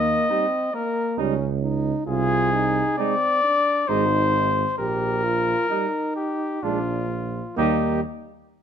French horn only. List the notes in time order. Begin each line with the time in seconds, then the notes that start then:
Already playing: A#3
0.29 C4
0.74 A#3
1.18 C#4
1.62 D#4
2.07 F4
2.52 D#4
2.98 C4
3.44 D4
3.89 D#4
4.79 G4
5.24 F4
5.70 D#4
6.63 D4
7.57 A#3